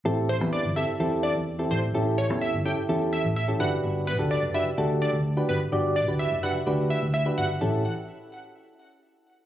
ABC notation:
X:1
M:4/4
L:1/16
Q:1/4=127
K:G
V:1 name="Digital synth lead"
z2 c z d2 e z3 d z3 c z | z2 ^c z e2 g z3 e z e z f z | z2 B z d2 e z3 d z3 B z | z2 d z e2 f z3 e z e z f z |
z16 |]
V:2 name="Synth keys"
[CEGA]2 z [CEGB]2 z [CEGA] z [CEGA]3 z2 [CEGA]2 z | [^CEGA]2 z [CEGA]2 z [CEGA] z [CEGA]3 z2 [CEGA] [DFGB]2- | [DFGB]2 z [DFGA]2 z [DFGB] z [DFGA]3 z2 [DFGB]2 z | [DFGd]2 z [DFGB]2 z [DFGB] z [DFGB]3 z2 [DFGB]2 z |
[^CEGA]2 z12 z2 |]
V:3 name="Fingered electric bass" clef=bass
A,,,3 E,,2 G,,,2 z E,,3 E,,3 A,,,2 | A,,,3 E,,2 G,,,2 z E,,3 A,,,3 G,,,2 | G,,,3 D,,2 F,,,2 z D,,3 D,,3 G,,,2 | G,,,3 D,,2 F,,,2 z D,,3 D,,3 G,,,2 |
A,,,2 z12 z2 |]